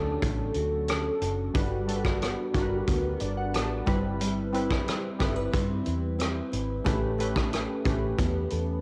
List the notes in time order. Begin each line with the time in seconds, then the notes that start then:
Already playing: D2 D3 F#3 C#4 D4 F#4 A4
0.22 A1 A3, kick, closed hi-hat
0.54 D2 F#4, closed hi-hat
0.88 C#4 A4, cross-stick, closed hi-hat
1.22 F#1 F#4, closed hi-hat
1.54 G1 G3 D4 F#4 B4, kick, closed hi-hat
1.87 G3 D4 F#4 A4, closed hi-hat
1.96 B4
2.05 kick, cross-stick
2.21 B3, cross-stick, closed hi-hat
2.54 G1 G3 D4 F#4 A#4, kick, closed hi-hat
2.62 B4
2.87 D2 B3, kick, closed hi-hat
3.20 G1 D4 D5, closed hi-hat
3.37 F#5
3.53 A1 B3 A5, cross-stick, closed hi-hat
3.86 G1 G3 C4 E4 B4 B5, kick, closed hi-hat
4.20 G3, closed hi-hat
4.52 G3 C4 E4 B4, closed hi-hat
4.71 kick, cross-stick
4.86 C4, cross-stick, closed hi-hat
5.19 G1 G3 C4 E4 A4 B4, kick, cross-stick, closed hi-hat
5.36 B4
5.52 G2 C4, kick, closed hi-hat
5.85 E2 E4, closed hi-hat
6.19 C4, cross-stick, closed hi-hat
6.52 G#1 E4, closed hi-hat
6.84 A1 A3 C#4 G4 B4, kick, closed hi-hat
7.18 A3 C#4 G4 A4 B4, closed hi-hat
7.36 kick, cross-stick
7.52 G4, cross-stick, closed hi-hat
7.84 A1 A3 C#4 G4 B4 C#5, kick, closed hi-hat
8.18 E2 B3, kick, closed hi-hat
8.50 E2 A4, closed hi-hat